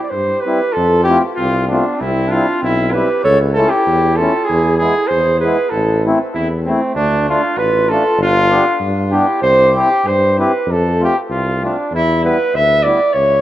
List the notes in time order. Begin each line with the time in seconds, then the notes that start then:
0.03 D5
0.10 G2 B4 C5
0.15 G4
0.40 G4 B4
0.45 G3 C4 E4
0.72 F4 A4
0.77 F2
1.04 E4 G4
1.08 A3 C4 F4
1.36 C2 C4 F4
1.67 A3 B3 C4 D4
1.72 F4
1.96 C4
2.01 C2 E4
2.28 G3 D4 F4
2.32 C4 E4
2.61 B1 C4 E4
2.92 G3 C4 E4 G4 B4
3.24 C#2 A4 C#5
3.53 A3 C#4 E4 F4 A4
3.69 E4 G4
3.87 E2
4.16 A3 C#4 F4 A4
4.21 E4
4.44 E4 G#4
4.50 E2
4.78 G#3 B3 E4 G#4
5.07 E2 G#4 C5
5.39 G#3 G#4 B4
5.44 B3 E4
5.70 A1 E4 A4
6.05 A3 C4 E4
6.34 E2 C4 E4
6.65 A3 C4 E4
6.95 D2 A3 D4
7.28 A3 D4 F4
7.57 A1 F4 B4
7.89 A3 D4 F4 A4
8.18 G1 D4
8.22 F4
8.50 B3 D4 G4
8.80 G2
9.11 B3 D4 E4 G4
9.42 C2 G4 C5
9.74 C4 E4 G4
10.05 G2 C5
10.38 C4 E4 G4 B4
10.67 F2
10.71 A4
11.00 A3 C4 F4 G4
11.30 C2 F4
11.62 A3 C4 D4 F4
11.92 E2 E4
12.22 G3 B3 E4 B4
12.54 D2 E5
12.83 G3 B3 E4 D5
13.13 C#2 C#5